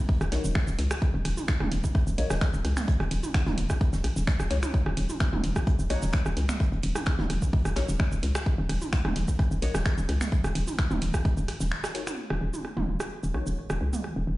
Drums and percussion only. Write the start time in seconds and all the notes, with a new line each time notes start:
0.09 kick, open hi-hat
0.21 cross-stick, closed hi-hat, shaker
0.32 snare, closed hi-hat, open hi-hat, ride
0.44 shaker
0.55 finger snap, kick, cross-stick, closed hi-hat
0.68 shaker
0.78 snare, closed hi-hat, open hi-hat, ride
0.91 finger snap, cross-stick, open hi-hat, shaker
1.01 kick, closed hi-hat
1.25 cross-stick, open hi-hat, ride
1.37 closed hi-hat, high tom, shaker
1.48 finger snap, kick, snare, closed hi-hat
1.60 cross-stick, mid tom, high tom
1.71 closed hi-hat, open hi-hat, ride
1.84 kick, shaker
1.95 kick, cross-stick, closed hi-hat
2.07 shaker
2.18 closed hi-hat, open hi-hat, ride
2.30 cross-stick, snare, shaker
2.41 finger snap, kick, snare, closed hi-hat
2.54 shaker
2.65 cross-stick, closed hi-hat, open hi-hat, ride
2.77 finger snap, snare, mid tom, shaker
2.88 kick, closed hi-hat
3.00 cross-stick, closed hi-hat
3.11 closed hi-hat, open hi-hat, ride
3.23 closed hi-hat, open hi-hat, high tom, shaker
3.34 finger snap, kick, cross-stick, snare, closed hi-hat
3.46 snare, mid tom, high tom
3.58 closed hi-hat, open hi-hat, ride
3.70 kick, cross-stick, shaker
3.81 kick, closed hi-hat
3.93 snare, shaker
4.04 cross-stick, closed hi-hat, open hi-hat, ride
4.16 snare, shaker
4.27 finger snap, kick, snare, closed hi-hat
4.40 cross-stick, shaker
4.50 snare, closed hi-hat, open hi-hat, ride
4.63 finger snap, open hi-hat, high tom, shaker
4.74 kick, closed hi-hat
4.86 cross-stick
4.97 open hi-hat, ride
5.09 closed hi-hat, high tom, shaker
5.20 finger snap, kick, cross-stick, snare, closed hi-hat
5.33 mid tom, high tom
5.44 closed hi-hat, open hi-hat, ride
5.56 kick, cross-stick, shaker
5.67 kick, closed hi-hat
5.79 shaker
5.89 cross-stick, closed hi-hat, open hi-hat, ride
6.02 snare, shaker
6.13 finger snap, kick, snare, closed hi-hat
6.26 cross-stick, shaker
6.37 closed hi-hat, open hi-hat, ride
6.49 finger snap, snare, mid tom, shaker
6.60 kick, cross-stick, closed hi-hat
6.72 closed hi-hat
6.82 closed hi-hat, open hi-hat, ride
6.95 cross-stick, closed hi-hat, open hi-hat, high tom, shaker
7.06 finger snap, kick, snare, closed hi-hat
7.19 snare, mid tom, high tom
7.29 cross-stick, closed hi-hat, open hi-hat, ride
7.42 kick, shaker
7.53 kick, open hi-hat
7.65 cross-stick, closed hi-hat, shaker
7.76 snare, closed hi-hat, open hi-hat, ride
7.89 shaker
7.99 finger snap, kick, cross-stick, closed hi-hat
8.12 shaker
8.22 snare, closed hi-hat, open hi-hat, ride
8.35 finger snap, cross-stick, open hi-hat, shaker
8.46 kick, closed hi-hat
8.69 cross-stick, open hi-hat, ride
8.82 closed hi-hat, high tom, shaker
8.92 finger snap, kick, snare, closed hi-hat
9.05 cross-stick, mid tom, high tom
9.16 closed hi-hat, open hi-hat, ride
9.28 kick, shaker
9.39 kick, cross-stick, closed hi-hat
9.51 shaker
9.61 closed hi-hat, open hi-hat, ride
9.74 cross-stick, snare, shaker
9.85 finger snap, kick, snare, closed hi-hat
9.98 shaker
10.09 cross-stick, closed hi-hat, open hi-hat, ride
10.21 finger snap, snare, mid tom, shaker
10.32 kick, closed hi-hat
10.44 cross-stick, closed hi-hat, shaker
10.55 closed hi-hat, open hi-hat, ride
10.68 closed hi-hat, open hi-hat, high tom, shaker
10.78 finger snap, kick, cross-stick, snare, closed hi-hat
10.90 snare, mid tom, high tom, shaker
11.01 closed hi-hat, open hi-hat, ride
11.14 kick, cross-stick, shaker
11.25 kick, closed hi-hat
11.37 shaker
11.48 cross-stick, closed hi-hat, open hi-hat, ride
11.61 snare, shaker
11.71 finger snap, closed hi-hat
11.84 cross-stick, snare, closed hi-hat, shaker
11.94 snare, open hi-hat, ride
12.07 finger snap, closed hi-hat, open hi-hat, high tom, shaker
12.30 cross-stick
12.54 high tom, shaker
12.65 cross-stick
12.77 mid tom, high tom
13.00 cross-stick, shaker
13.23 shaker
13.34 cross-stick
13.47 shaker
13.70 cross-stick, shaker
13.93 mid tom, shaker
14.04 cross-stick